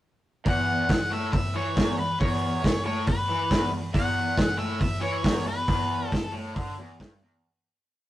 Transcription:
0.46 E2 F#5, kick, open hi-hat
0.89 E2, kick, snare, open hi-hat
1.11 A2 E5
1.33 E2 E5, kick, open hi-hat
1.55 E3 C#5
1.75 E2, kick, snare, open hi-hat
1.99 E2 B4
2.20 E2 C#5, kick, open hi-hat
2.63 E2, kick, snare, open hi-hat
2.85 A2 C#5
3.07 E2 B4, kick, open hi-hat
3.29 E3
3.51 E2, kick, snare, open hi-hat
3.71 E2
3.93 E2 F#5, kick, open hi-hat
4.37 E2, kick, snare, open hi-hat
4.58 A2 E5
4.80 E2 E5, kick, open hi-hat
5.01 E3 C#5
5.22 E2, kick, snare, open hi-hat
5.46 E2 B4
5.68 E2, kick, open hi-hat
6.08 E2 A4
6.12 kick, snare, open hi-hat
6.33 A2
6.56 D3, kick, open hi-hat
6.78 E2
7.00 G2, kick, snare, open hi-hat
7.23 E2

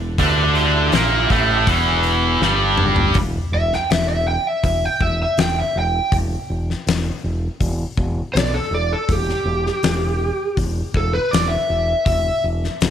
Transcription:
Already playing: E1 E2 E5
0.18 D2 D3 D4 E4 G4 B4 E5, kick, open hi-hat
0.53 E4 G4 E5, open hi-hat
0.92 A#1 A#2 A#3, snare, open hi-hat
1.30 A1 A2 A3, kick, open hi-hat
1.67 E1 E2 E3, kick, open hi-hat
2.03 open hi-hat
2.40 G1 G2 G3, snare
2.77 mid tom
2.96 floor tom
3.14 E1, kick, open hi-hat
3.52 E1 E5
3.73 G5, snare
3.90 E1 E5, snare, open hi-hat
4.09 E5
4.28 G5
4.47 E5
4.63 E1 E5, kick, open hi-hat
4.85 G5
5.01 E1 E5, kick
5.22 E5
5.37 E1 G5, snare, open hi-hat
5.60 E5
5.76 E1 G5
6.12 E1, kick, open hi-hat
6.50 E1
6.70 snare
6.87 E1, snare, open hi-hat
7.24 E1
7.60 E1, kick, open hi-hat
7.97 E1, kick
8.34 B1 D5, snare, open hi-hat
8.54 A4
8.71 E1 D5
8.93 A4
9.09 E1 G4, kick, open hi-hat
9.29 snare
9.45 E1
9.66 snare
9.83 E1, snare, open hi-hat
10.57 E1, kick, open hi-hat
10.94 E1 A4, kick
11.13 B4
11.31 E1 D5, snare, open hi-hat
11.48 E5
11.70 E1
12.06 E1 E5, kick, open hi-hat
12.44 E1
12.64 snare
12.81 E1, snare, open hi-hat

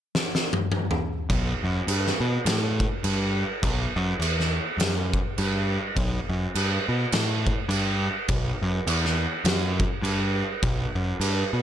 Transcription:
0.15 snare
0.35 snare
0.53 high tom
0.72 high tom
0.91 mid tom
1.30 B1, kick, crash
1.64 F#2
1.87 G2, crash
2.07 snare
2.20 B2
2.45 A2, snare, crash
2.80 kick
3.04 G2, crash
3.63 B1, kick, crash
3.96 F#2
4.19 E2, crash
4.40 snare
4.77 F#2, snare, crash
5.14 kick
5.38 G2, crash
5.96 B1, kick, crash
6.29 F#2
6.55 G2, crash
6.88 B2
7.12 A2, snare, crash
7.47 kick
7.69 G2, crash
8.28 B1, kick, crash
8.62 F#2
8.87 E2, crash
9.05 snare
9.44 F#2, snare, crash
9.80 kick
10.02 G2, crash
10.63 B1, kick, crash
10.95 F#2
11.20 G2, crash
11.53 B2

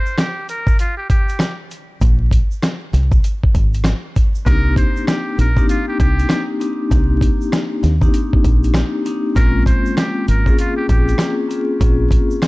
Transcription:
Already playing: C5
0.06 shaker
0.18 G4, cross-stick, snare, closed hi-hat, shaker
0.49 A#4, closed hi-hat, shaker
0.67 kick, shaker
0.79 F4, closed hi-hat, shaker
0.97 G4
1.10 G4, kick, closed hi-hat, shaker
1.29 closed hi-hat, shaker
1.39 cross-stick, snare, closed hi-hat, shaker
1.71 closed hi-hat, shaker
2.01 A#1, kick, closed hi-hat, shaker
2.31 kick, closed hi-hat, shaker
2.51 shaker
2.62 cross-stick, snare, closed hi-hat, shaker
2.93 C2, snare, closed hi-hat, shaker
3.12 kick, shaker
3.24 closed hi-hat, shaker
3.44 kick
3.55 G#1, kick, closed hi-hat, shaker
3.74 closed hi-hat, shaker
3.84 cross-stick, snare, closed hi-hat, shaker
4.16 kick, closed hi-hat, shaker
4.35 shaker
4.45 C2 A#3 C4 D4 D#4 G4 A#4, kick, closed hi-hat, shaker
4.76 C5, kick, closed hi-hat, shaker
4.97 shaker
5.07 G4, cross-stick, snare, closed hi-hat, shaker
5.38 A#1 A#4, closed hi-hat, shaker
5.56 A#3 C4 D4 D#4 G4, kick, shaker
5.69 F4, closed hi-hat, shaker
5.88 G4
6.00 C2 G4, kick, closed hi-hat, shaker
6.19 closed hi-hat, shaker
6.29 A#3 C4 D4 D#4 G4, cross-stick, snare, closed hi-hat, shaker
6.60 A#3 C4 D4 D#4 G4, closed hi-hat, shaker
6.90 C2 A#3 C4 D4 D#4 G4, kick, closed hi-hat, shaker
7.21 kick, closed hi-hat, shaker
7.41 shaker
7.52 cross-stick, snare, closed hi-hat, shaker
7.83 D#2, snare, closed hi-hat, shaker
8.01 A#3 C4 D4 D#4 G4, kick, shaker
8.14 closed hi-hat, shaker
8.33 kick
8.44 A#1, kick, closed hi-hat, shaker
8.64 closed hi-hat, shaker
8.74 A#3 C4 D4 D#4 G4, cross-stick, snare, closed hi-hat, shaker
9.05 A#3 C4 D4 D#4 G4, closed hi-hat, shaker
9.35 A#1 G#3 A#3 C4 C#4 F4 A#4, kick, closed hi-hat, shaker
9.66 C5, kick, closed hi-hat, shaker
9.86 shaker
9.97 G4, cross-stick, snare, closed hi-hat, shaker
10.28 G#1 A#4, closed hi-hat, shaker
10.46 A#3 C4 C#4 F4 G#4, kick, shaker
10.59 F4, closed hi-hat, shaker
10.77 G4
10.89 A#1 G4, kick, closed hi-hat, shaker
11.08 closed hi-hat, shaker
11.18 A#3 C4 C#4 F4 G#4, cross-stick, snare, closed hi-hat, shaker
11.48 A#3 C4 C#4 F4 G#4, closed hi-hat, shaker
11.80 A#1 A#3 C4 C#4 F4 G#4, kick, closed hi-hat, shaker
12.11 kick, closed hi-hat, shaker
12.31 shaker
12.42 cross-stick, snare, closed hi-hat, shaker

